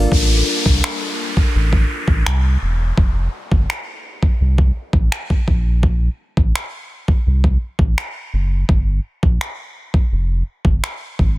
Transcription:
Already playing: D4 F4 A4 A#4 D5 F5
0.12 A1, kick, downlifter
0.66 C2, kick
0.84 finger snap
1.37 kick
1.55 A1
1.73 kick
2.08 A1, kick
2.26 C2, finger snap
2.62 E1
2.98 F1, kick
3.52 G1, kick
3.70 finger snap
4.23 kick
4.41 C2
4.58 kick
4.93 A1, kick
5.12 finger snap
5.30 kick
5.48 A#1, kick
5.83 kick
6.37 A1, kick
6.56 finger snap
7.08 kick
7.27 C2
7.44 kick
7.79 A1, kick
7.98 finger snap
8.33 F#1
8.69 G1, kick
9.23 A#1, kick
9.41 finger snap
9.94 kick
10.12 F1
10.65 G1, kick
10.84 finger snap
11.19 G#1, kick

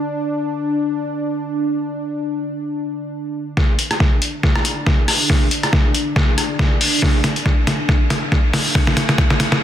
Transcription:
Already playing: D4
3.57 D4, kick, snare
3.79 closed hi-hat
3.91 cross-stick, closed hi-hat
4.00 kick, snare
4.22 closed hi-hat
4.43 kick, snare
4.55 cross-stick
4.65 closed hi-hat
4.87 kick, snare
5.08 cross-stick, open hi-hat
5.30 kick, snare
5.51 closed hi-hat
5.63 cross-stick, closed hi-hat
5.73 kick, snare
5.95 closed hi-hat
6.16 kick, snare
6.38 cross-stick, closed hi-hat
6.59 kick, snare
6.81 open hi-hat
7.02 kick, snare
7.24 snare, closed hi-hat
7.36 closed hi-hat
7.46 kick, snare
7.67 snare, closed hi-hat
7.89 kick, snare
8.10 snare, closed hi-hat
8.32 kick, snare
8.53 snare, open hi-hat
8.75 kick, snare
8.87 snare
8.97 snare, closed hi-hat
9.09 snare, closed hi-hat
9.18 kick, snare
9.30 snare
9.40 snare, closed hi-hat
9.52 snare

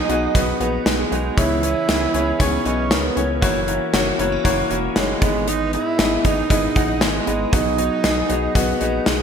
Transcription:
Already playing: B2 F#3 B3 D#4 F#4 G#4 D#5 F#5
0.09 B1 B3 D#4 F#4 G#4 D#5, closed hi-hat
0.35 B1 B3 F#4 G#4 D#5, kick, closed hi-hat
0.60 A#1 B3 D#4 F#4 G#4 D#5, closed hi-hat
0.85 B1 G#3 B3 F#4 G#4 D#5, snare, closed hi-hat
1.11 B1 B3 D#4 F#4 G#4 D#5, closed hi-hat
1.37 C#2 C#3 E3 B3 E4 G#4 C#5, kick, closed hi-hat
1.63 B3 C#4 E4 G#4 C#5, closed hi-hat
1.88 C#2 B3 E4 G#4 C#5, snare, closed hi-hat
2.14 C#2 B3 C#4 E4 G#4 C#5, closed hi-hat
2.39 C#2 B3 C#4 E4 G#4 C#5, kick, closed hi-hat
2.65 B1 B3 C#4 E4 G#4 D#5, closed hi-hat
2.90 C#2 B3 E4 G#4 A#4, snare, closed hi-hat
3.16 C#2 B3 C#4 E4 G#4 C#5, closed hi-hat
3.41 F#1 E3 A#3 E4 F#4 C#5, kick, closed hi-hat
3.67 A#3 C#4 E4 F#4 C#5, closed hi-hat
3.93 F#1 A#3 E4 F#4 C#5, snare, closed hi-hat
4.18 F#1 A#3 B3 E4 F#4 C#5, closed hi-hat
4.32 C#4
4.44 F#1 A#3 E4 F#4 C#5, kick, closed hi-hat
4.70 E1 A#3 C#4 E4 F#4 C#5, closed hi-hat
4.95 F#1 G#3 A#3 E4 F#4 C#5, snare, closed hi-hat
5.21 G#1 G#2 B3 E4 G#4 D#5, kick, closed hi-hat
5.48 B3 D#4, closed hi-hat
5.73 B3 D#4 E4 G#4 D#5, closed hi-hat
5.99 G#1 B3 E4 G#4 D#5, snare, closed hi-hat
6.24 G#1 B3 D#4 E4 G#4 D#5, kick, closed hi-hat
6.50 G#1 B3 E4 G#4 D#5, kick, closed hi-hat
6.75 A#1 B3 D#4 E4 G#4 F#5, kick, closed hi-hat
7.01 G#1 G#3 B3 E4 G#4 D#5, snare, closed hi-hat
7.26 G#1 B3 D#4 E4 G#4 D#5, closed hi-hat
7.53 B1 B2 F#3 B3 D#4 F#4 G#4 D#5, kick, closed hi-hat
7.78 B3 D#4 F#4 G#4 D#5, closed hi-hat
8.03 B1 B3 F#4 G#4 D#5, snare, closed hi-hat
8.29 B1 B3 D#4 F#4 G#4 D#5, closed hi-hat
8.54 B1 B3 F#4 G#4 D#5, kick, closed hi-hat
8.80 A#1 B3 D#4 F#4 G#4 D#5, closed hi-hat
9.06 B1 G#3 B3 F#4 G#4 D#5, snare, closed hi-hat

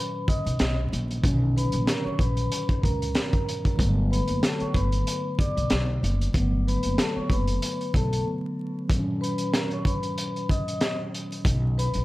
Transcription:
Already playing: A#2 D#3 F#3 C#4 B4 B5
0.28 D#5 D#6, kick, closed hi-hat
0.46 B1, closed hi-hat
0.59 B1, snare, closed hi-hat
0.92 A#1, closed hi-hat
1.11 closed hi-hat
1.21 B1 A#2 D3 F#3, kick, closed hi-hat
1.25 D#3 C#4
1.56 B4 B5, closed hi-hat
1.72 A#1, closed hi-hat
1.85 A#4 A#5, snare, closed hi-hat
2.04 C#5 C#6, muted upright bass stroke
2.19 A#1 B4 B5, kick, closed hi-hat
2.37 closed hi-hat
2.52 closed hi-hat
2.69 kick, closed hi-hat
2.82 C#2 A#4 A#5, kick, closed hi-hat
3.02 closed hi-hat
3.15 snare, closed hi-hat
3.33 kick, closed hi-hat
3.49 closed hi-hat
3.65 kick, closed hi-hat
3.75 D3 F#3 A3, kick
3.79 G1 B3, closed hi-hat
4.11 B4 B5, closed hi-hat
4.28 F#1, closed hi-hat
4.43 A4 A5, snare, closed hi-hat
4.60 C#5 C#6, muted upright bass stroke, closed hi-hat
4.74 G1 B4 B5, kick, closed hi-hat
4.92 closed hi-hat
5.07 closed hi-hat
5.38 D5 D6, kick, closed hi-hat
5.57 B1, closed hi-hat
5.70 B1, snare, closed hi-hat
6.03 F#1, closed hi-hat
6.21 closed hi-hat
6.33 G1 D3 F#3 A3, kick, closed hi-hat
6.37 B3
6.67 B4 B5, closed hi-hat
6.83 F#1, closed hi-hat
6.98 A4 A5, snare, closed hi-hat
7.15 C#5 C#6, muted upright bass stroke
7.30 F#1 B4 B5, kick, closed hi-hat
7.48 closed hi-hat
7.62 closed hi-hat
7.81 closed hi-hat
7.94 B1 A4 A5, kick, closed hi-hat
8.13 closed hi-hat
8.25 D3 F#3 A3 B3
8.88 A#2 D#3 F#3, kick, closed hi-hat
8.93 C4
8.99 C#4
9.21 B4 B5, closed hi-hat
9.38 closed hi-hat
9.52 A#4 A#5, snare, closed hi-hat
9.71 C#5 C#6, closed hi-hat
9.85 B4 B5, kick, closed hi-hat
10.03 closed hi-hat
10.18 closed hi-hat
10.36 closed hi-hat
10.49 D#5 D#6, kick, closed hi-hat
10.68 closed hi-hat
10.81 snare, closed hi-hat
11.15 closed hi-hat
11.32 closed hi-hat
11.45 B1, kick, closed hi-hat
11.78 B4 B5, closed hi-hat
11.94 A#1, closed hi-hat

